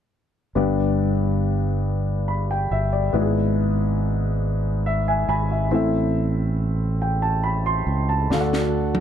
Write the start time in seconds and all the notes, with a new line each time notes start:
0.55 G1 G2 B3 D4 G4 D5
2.28 B5
2.51 G5
2.71 G1 E5
2.93 D5
3.13 G#1 G#2 B3 E4 F#4 D5
3.21 G#4
4.86 E5
5.08 E5 G#5
5.29 G#1 G#5 B5
5.51 E5
5.71 A1 A2 C4 E4 A4 E5
7.02 G5
7.22 A5
7.44 B5
7.66 C6
7.87 C#2
8.09 A5
8.30 D2 D3 D4 F#4 A4 F5, snare
8.40 F#5
8.53 snare
8.95 high tom